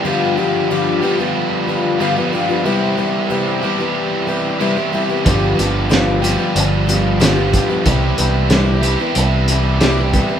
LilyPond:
<<
  \new Staff \with { instrumentName = "Twelve-string acoustic guitar" } { \time 4/4 \key g \mixolydian \tempo 4 = 92 <g, d f b f' g'>8 <f b f' g'>8 <g, d f b f' g'>8 <f b f' g'>16 <f b f' g'>8. <f b f' g'>8 <g, d f b f' g'>16 <f b f' g'>16 <f b f' g'>16 <f b f' g'>16 | <c g b e' g'>8 <g b e' g'>8 <c g b e' g'>8 <g b e' g'>16 <b e' g'>8. <g b e' g'>8 <c g b e' g'>16 <b e' g'>16 <g b e' g'>16 <b e' g'>16 | <g, d f b f' g'>8 <f b f' g'>8 <g, d f b f' g'>8 <f b f' g'>16 <f b f' g'>8. <f b f' g'>8 <g, d f b f' g'>16 <f b f' g'>16 <f b f' g'>16 <f b f' g'>16 | <c g b e' g'>8 <g b e' g'>8 <c g b e' g'>8 <g b e' g'>16 <b e' g'>8. <g b e' g'>8 <c g b e' g'>16 <b e' g'>16 <g b e' g'>16 <b e' g'>16 | }
  \new Staff \with { instrumentName = "Overdriven electric guitar" } { \clef bass \time 4/4 \key g \mixolydian <g, d f g b g'>4. <g, d f g b g'>4. <g, d f g b g'>4 | <c e g e' g'>4. <c e g e' g'>4. <c e g e' g'>4 | <g, d f g b g'>4. <g, d f g b g'>4. <g, d f g b g'>4 | <c e g e' g'>4. <c e g e' g'>4. <c e g e' g'>4 | }
  \new Staff \with { instrumentName = "Fingered electric bass" } { \clef bass \time 4/4 \key g \mixolydian r1 | r1 | g,,8 g,,4. g,,2 | c,8 c,4. c,2 | }
  \new DrumStaff \with { instrumentName = "Drums" } \drummode { \time 4/4 r4 r4 r4 r4 | r4 r4 r4 r4 | <hh bd>8 hh8 <hh sn>8 hh8 hh8 hh8 <hh sn>8 <hh bd>8 | <hh bd>8 hh8 <hh sn>8 hh8 hh8 hh8 <hh sn>8 <hh bd>8 | }
>>